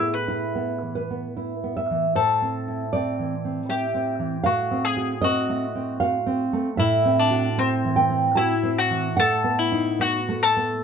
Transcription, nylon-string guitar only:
0.00 2.12 A2 medium
0.00 0.44 B3 soft
0.00 0.91 G#4 medium
0.28 0.71 E4 soft
0.55 0.99 B3 soft
0.83 1.26 E3 soft
0.95 1.73 B4 medium
1.10 1.53 B3 soft
1.37 1.76 E4 soft
1.64 2.06 B3 soft
1.77 2.14 E5 medium
1.91 2.16 E3 soft
2.15 4.42 A2 medium
2.15 2.91 C5 medium
2.42 2.84 C4 soft
2.68 3.09 E4 soft
2.93 3.34 C4 medium
2.93 3.66 D5 medium
3.19 3.60 E3 soft
3.45 3.85 C4 soft
3.69 4.10 E4 soft
3.69 4.43 E5 medium
3.94 4.36 C4 soft
4.19 4.46 E3 soft
4.44 6.53 A2 medium
4.44 5.19 F5 medium
4.71 5.13 C4 medium
4.97 5.39 F#4 medium
5.22 5.65 C4 medium
5.22 5.98 D#5 loud
5.49 5.91 A3 soft
5.75 6.17 C4 soft
6.00 6.43 F#4 medium
6.00 6.76 F5 loud
6.26 6.69 C4 medium
6.53 6.78 A3 medium
6.77 9.14 A2 medium
6.77 7.92 E5 medium
7.05 7.47 C4 medium
7.31 7.73 F#4 medium
7.58 8.00 C4 medium
7.85 8.27 E3 medium
7.96 8.35 G5 medium
8.10 8.53 C4 medium
8.35 8.80 F#4 medium
8.35 9.15 A5 medium
8.63 9.07 C4 medium
8.91 9.18 E3 medium
9.17 10.84 A2 medium
9.17 10.38 F#5 loud
9.44 9.90 B3 medium
9.72 10.18 D#4 medium
9.99 10.45 B3 medium
10.29 10.73 A3 medium
10.57 10.84 B3 medium

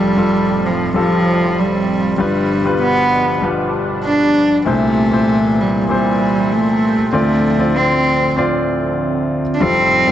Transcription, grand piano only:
0.00 2.15 F1 medium
0.00 2.15 F2 soft
0.00 0.10 G3 medium
0.00 0.10 F4 medium
0.00 0.11 A4 medium
0.17 0.82 G3 medium
0.17 0.83 F4 medium
0.17 0.83 A4 medium
0.94 1.99 G3 medium
0.94 1.99 F4 medium
0.94 2.00 A4 medium
2.18 4.63 G1 medium
2.18 4.63 G2 soft
2.18 2.58 G3 medium
2.18 2.58 F4 medium
2.18 2.59 B4 medium
2.64 3.30 G3 medium
2.64 3.31 F4 soft
2.64 3.31 B4 medium
3.42 4.46 G3 medium
3.42 4.47 F4 medium
3.42 4.47 B4 medium
4.65 7.10 C2 medium
4.65 5.05 A#2 medium
4.65 7.10 C3 medium
4.65 5.05 E4 medium
4.65 5.06 C5 medium
5.11 5.77 A#2 medium
5.11 5.78 E4 medium
5.11 5.78 C5 medium
5.89 6.94 A#2 medium
5.89 6.94 E4 soft
5.89 6.95 C5 medium
7.13 9.57 D2 medium
7.13 9.57 D3 medium
7.13 7.52 C4 medium
7.13 7.53 F4 medium
7.13 7.53 D5 medium
7.59 8.25 C4 medium
7.59 8.25 F4 medium
7.59 8.26 D5 medium
8.37 9.41 C4 medium
8.37 9.42 F4 medium
8.37 9.42 D5 medium
9.60 10.12 F1 soft
9.60 10.12 F2 medium
9.60 10.00 G3 medium
9.60 10.01 F4 soft
9.60 10.01 A4 medium
10.07 10.12 G3 medium
10.07 10.12 F4 medium

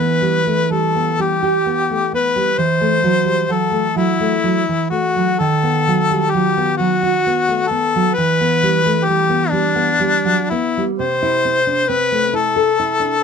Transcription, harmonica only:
0.00 0.73 B4 medium
0.72 1.22 A4 medium
1.21 2.14 G4 medium
2.14 2.60 B4 medium
2.58 3.53 C5 medium
3.52 3.98 A4 medium
3.97 4.90 E4 medium
4.90 5.41 F#4 medium
5.39 6.32 A4 medium
6.31 6.77 G4 medium
6.77 7.69 F#4 medium
7.67 8.16 A4 medium
8.15 9.06 B4 medium
9.05 9.51 G4 medium
9.49 10.51 D4 medium
10.50 10.84 E4 medium
10.99 11.90 C5 medium
11.88 12.37 B4 medium
12.35 13.24 A4 medium

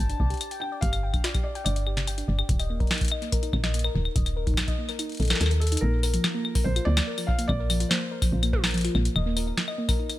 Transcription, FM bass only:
0.00 0.13 G1 medium
0.20 0.34 C2 medium
0.82 1.19 G1 loud
1.66 2.23 G1 medium
2.28 2.42 G1 medium
2.49 2.85 D#1 loud
3.53 3.89 A#1 loud
3.95 4.09 D#1 loud
4.16 4.52 D#1 loud
5.20 5.34 A#1 medium
5.41 5.77 D#2 medium
5.82 6.19 A#1 loud
6.66 6.80 A#1 medium
6.87 7.00 D2 loud
7.49 7.85 A#1 loud
8.32 8.89 A#1 medium
8.95 9.09 A#1 loud
9.16 9.52 D#1 loud

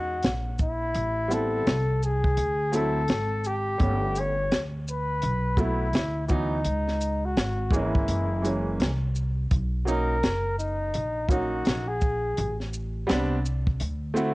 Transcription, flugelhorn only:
0.00 0.32 F#4 medium
0.61 1.35 E4 loud
1.34 2.03 A4 loud
2.05 2.77 G#4 medium
2.75 3.48 A4 loud
3.47 4.21 G4 loud
4.20 4.64 C#5 loud
4.90 5.62 B4 medium
5.60 6.25 E4 loud
6.27 6.33 E4 medium
6.32 7.27 D#4 loud
7.25 7.74 F#4 medium
7.76 8.77 E4 medium
9.89 10.55 A#4 loud
10.59 11.31 D#4 medium
11.30 11.89 F#4 loud
11.88 12.59 G#4 medium

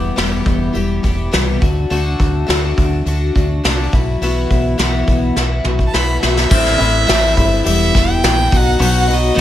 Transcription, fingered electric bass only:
0.00 0.12 E1 medium
0.17 0.40 E1 medium
0.46 0.69 E1 medium
0.75 0.98 E1 medium
1.04 1.27 E1 medium
1.34 1.56 C2 medium
1.62 1.85 D2 medium
1.91 2.14 D2 medium
2.20 2.43 D2 medium
2.49 2.72 D2 medium
2.78 3.01 D2 medium
3.06 3.29 D2 medium
3.36 3.59 D2 medium
3.64 3.87 C2 medium
3.93 4.16 B1 medium
4.21 4.44 B1 medium
4.51 4.74 B1 medium
4.79 5.02 B1 medium
5.08 5.31 B1 medium
5.36 5.59 B1 medium
5.65 5.88 B1 medium
5.94 6.17 B1 medium
6.23 6.46 B1 medium
6.51 6.76 A1 medium
6.80 7.05 A1 medium
7.09 7.34 A1 medium
7.37 7.62 G1 medium
7.66 7.90 E1 medium
7.95 8.20 E1 medium
8.23 8.48 A#1 medium
8.53 8.77 B1 medium
8.80 9.29 B1 medium
9.37 9.41 B1 medium

